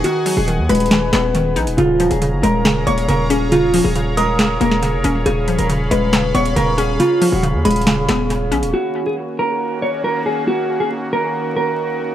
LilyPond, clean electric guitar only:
\new Staff \with { instrumentName = "Clean electric guitar" } { \time 4/4 \key ees \minor \tempo 4 = 138 ges'8. aes'16 r8 ces''4 ces''4. | f'8. aes'16 r8 bes'4 des''8 bes'8 aes'8 | f'8. aes'16 r8 bes'4 bes'4. | aes'8. bes'16 r8 ces''4 des''8 bes'8 aes'8 |
f'8. ges'16 r8 aes'4 aes'4. | ges'8. aes'16 r8 bes'4 des''8 bes'8 aes'8 | ges'8. aes'16 r8 bes'4 bes'4. | }